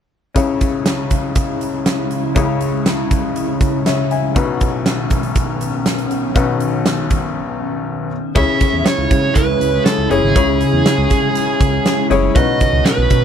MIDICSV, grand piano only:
0, 0, Header, 1, 2, 480
1, 0, Start_track
1, 0, Key_signature, 4, "minor"
1, 0, Tempo, 500000
1, 344, Time_signature, 4, 2, 24, 8
1, 12715, End_track
2, 0, Start_track
2, 0, Title_t, "Grand piano"
2, 0, Program_c, 0, 0
2, 331, Note_on_c, 0, 61, 60
2, 339, Note_on_c, 0, 64, 55
2, 343, Note_on_c, 0, 37, 59
2, 343, Note_on_c, 0, 49, 59
2, 346, Note_on_c, 0, 68, 56
2, 355, Note_on_c, 0, 73, 66
2, 510, Control_c, 0, 64, 127
2, 2219, Note_off_c, 0, 61, 0
2, 2223, Note_off_c, 0, 64, 0
2, 2225, Note_off_c, 0, 37, 0
2, 2225, Note_off_c, 0, 49, 0
2, 2226, Note_off_c, 0, 68, 0
2, 2231, Note_off_c, 0, 73, 0
2, 2253, Note_on_c, 0, 61, 66
2, 2264, Note_on_c, 0, 64, 56
2, 2266, Note_on_c, 0, 37, 61
2, 2267, Note_on_c, 0, 49, 63
2, 2271, Note_on_c, 0, 68, 57
2, 2278, Note_on_c, 0, 73, 66
2, 3682, Note_off_c, 0, 73, 0
2, 3708, Note_on_c, 0, 76, 54
2, 3713, Note_on_c, 0, 73, 48
2, 3934, Note_off_c, 0, 76, 0
2, 3937, Note_off_c, 0, 73, 0
2, 3948, Note_on_c, 0, 80, 59
2, 3954, Note_on_c, 0, 76, 49
2, 4140, Note_off_c, 0, 61, 0
2, 4145, Note_off_c, 0, 64, 0
2, 4146, Note_off_c, 0, 37, 0
2, 4147, Note_off_c, 0, 49, 0
2, 4149, Note_off_c, 0, 68, 0
2, 4174, Note_on_c, 0, 61, 64
2, 4180, Note_on_c, 0, 63, 58
2, 4186, Note_on_c, 0, 35, 59
2, 4186, Note_on_c, 0, 47, 65
2, 4189, Note_on_c, 0, 66, 59
2, 4196, Note_on_c, 0, 71, 70
2, 4197, Control_c, 0, 64, 0
2, 4353, Control_c, 0, 64, 127
2, 4402, Note_off_c, 0, 80, 0
2, 4405, Note_off_c, 0, 76, 0
2, 6061, Note_off_c, 0, 61, 0
2, 6063, Note_off_c, 0, 63, 0
2, 6066, Note_off_c, 0, 35, 0
2, 6066, Note_off_c, 0, 47, 0
2, 6068, Note_off_c, 0, 66, 0
2, 6072, Note_off_c, 0, 71, 0
2, 6091, Note_on_c, 0, 61, 61
2, 6097, Note_on_c, 0, 63, 59
2, 6102, Note_on_c, 0, 35, 61
2, 6104, Note_on_c, 0, 47, 65
2, 6107, Note_on_c, 0, 66, 60
2, 6114, Note_on_c, 0, 71, 68
2, 7744, Note_off_c, 0, 35, 0
2, 7744, Note_off_c, 0, 61, 0
2, 7746, Note_off_c, 0, 47, 0
2, 7747, Note_off_c, 0, 63, 0
2, 7752, Note_off_c, 0, 66, 0
2, 7756, Note_off_c, 0, 71, 0
2, 7796, Control_c, 0, 64, 0
2, 8015, Note_on_c, 0, 61, 66
2, 8021, Note_on_c, 0, 64, 58
2, 8022, Note_on_c, 0, 49, 55
2, 8023, Note_on_c, 0, 68, 62
2, 8028, Note_on_c, 0, 73, 74
2, 8199, Control_c, 0, 64, 127
2, 8704, Note_off_c, 0, 49, 0
2, 8916, Note_off_c, 0, 61, 0
2, 8919, Note_off_c, 0, 64, 0
2, 8920, Note_off_c, 0, 68, 0
2, 8923, Note_off_c, 0, 73, 0
2, 9698, Note_on_c, 0, 61, 67
2, 9701, Note_on_c, 0, 64, 58
2, 9706, Note_on_c, 0, 68, 62
2, 9711, Note_on_c, 0, 73, 69
2, 9925, Note_off_c, 0, 61, 0
2, 9926, Note_off_c, 0, 64, 0
2, 9929, Note_off_c, 0, 68, 0
2, 9932, Note_off_c, 0, 73, 0
2, 9939, Note_on_c, 0, 61, 68
2, 9941, Note_on_c, 0, 64, 61
2, 9942, Note_on_c, 0, 49, 56
2, 9945, Note_on_c, 0, 68, 59
2, 9949, Note_on_c, 0, 73, 70
2, 10625, Note_off_c, 0, 49, 0
2, 10838, Note_off_c, 0, 61, 0
2, 10839, Note_off_c, 0, 64, 0
2, 10841, Note_off_c, 0, 68, 0
2, 10843, Note_off_c, 0, 73, 0
2, 11618, Note_on_c, 0, 61, 83
2, 11621, Note_on_c, 0, 64, 74
2, 11625, Note_on_c, 0, 68, 71
2, 11631, Note_on_c, 0, 73, 92
2, 11841, Note_off_c, 0, 61, 0
2, 11847, Note_off_c, 0, 64, 0
2, 11848, Note_off_c, 0, 68, 0
2, 11852, Note_off_c, 0, 73, 0
2, 11855, Note_on_c, 0, 61, 68
2, 11861, Note_on_c, 0, 63, 60
2, 11863, Note_on_c, 0, 47, 59
2, 11865, Note_on_c, 0, 66, 63
2, 11867, Note_on_c, 0, 71, 74
2, 11878, Control_c, 0, 64, 0
2, 12052, Control_c, 0, 64, 127
2, 12545, Note_off_c, 0, 47, 0
2, 12715, Note_off_c, 0, 61, 0
2, 12715, Note_off_c, 0, 63, 0
2, 12715, Note_off_c, 0, 66, 0
2, 12715, Note_off_c, 0, 71, 0
2, 12715, End_track
0, 0, End_of_file